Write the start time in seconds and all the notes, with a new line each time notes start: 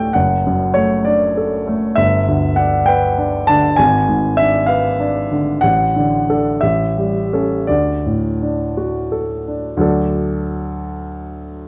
Already playing: D2 A2 A3 F#4 A4 D5 G5
0.13 F#1 F#5
0.47 F#2
0.74 A3 C#5
1.05 D4 D5
1.37 A4
1.68 A3
1.96 G1 E5
2.28 D2
2.56 D4 F#5
2.86 B4 G5
3.18 D4
3.47 D3 A5
3.76 G#1 G#5
4.08 G#2
4.37 D4 E5
4.66 B4 F5
5.00 D4
5.32 D3
5.61 A1 F#5
5.96 D3
6.30 D4 A4
6.61 A1 E5
6.98 G3
7.33 C#4 A4
7.67 D2 D5
8.06 A2
8.42 D4
8.77 F#4
9.12 A4
9.48 D4
9.77 D2 F#3 D4
9.81 A4